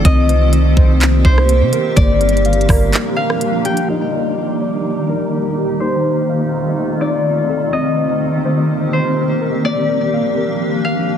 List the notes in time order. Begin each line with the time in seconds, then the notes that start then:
Already playing: D#3 C4 D#4 C5 D5
0.04 C2 A#3 C4 G4 C5 D#5, kick, closed hi-hat
0.29 C5, closed hi-hat
0.53 D#5, closed hi-hat
0.77 C2 C5, kick
1.01 clap, closed hi-hat
1.25 C2 C5, kick
1.38 cross-stick
1.49 closed hi-hat
1.61 C3
1.73 A#4, closed hi-hat
1.96 G1 F3 G3 A#3 D4 F4 A#4 D5, kick, closed hi-hat
2.21 A#4, closed hi-hat
2.29 closed hi-hat
2.37 closed hi-hat
2.45 F5, closed hi-hat
2.53 closed hi-hat
2.61 closed hi-hat
2.69 G1 A#4, kick, cross-stick, open hi-hat
2.93 clap, closed hi-hat
3.16 A#4 F5
3.30 cross-stick
3.41 closed hi-hat
3.65 G4 G5, closed hi-hat
3.77 closed hi-hat
3.89 D#3 G3 A#3 D#4 G4 D#5 D6
4.12 D5
4.37 D#5
4.61 D5
5.09 A#4 D5
5.57 G4
5.80 A3 C4 D#4 F4 C5
6.05 C5
6.29 F5
7.01 D#4 D5
7.49 A4
7.73 A#3 C4 G4 A#4 D#5
7.97 C5
8.21 D#5
8.45 C5
8.93 C5
9.41 A#4
9.64 F3 A#3 D4 G4 D5 F5
9.89 A#4
10.14 F5
10.37 A#4
10.85 A#4 F5